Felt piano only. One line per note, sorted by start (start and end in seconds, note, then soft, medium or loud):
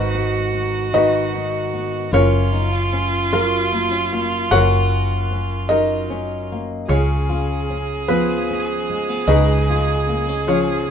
0.00 0.89 D#4 medium
0.00 0.90 F#4 medium
0.00 0.90 B4 medium
0.00 0.92 D#5 medium
0.94 2.09 D#4 medium
0.94 2.09 B4 medium
0.94 2.09 D#5 medium
2.13 3.28 C#4 medium
2.13 3.28 F4 medium
2.13 3.28 A#4 medium
2.13 3.36 C#5 medium
3.33 4.47 F4 medium
3.33 4.47 A#4 medium
3.33 4.47 F5 medium
4.51 5.66 F#4 medium
4.51 5.67 A#4 medium
4.51 5.67 C#5 medium
4.51 5.74 F#5 loud
5.69 6.85 D#4 medium
5.69 6.85 A#4 medium
5.69 6.92 D#5 medium
6.88 8.05 C#4 medium
6.88 8.05 F4 medium
6.88 8.04 G#4 medium
6.88 8.12 C#5 medium
8.08 9.24 B3 medium
8.08 9.24 F4 medium
8.08 9.27 B4 medium
9.28 10.44 D#4 medium
9.28 10.44 G#4 medium
9.28 10.44 B4 medium
9.28 10.51 D#5 medium
10.48 10.90 C#4 medium
10.48 10.90 F4 medium
10.48 10.90 C#5 medium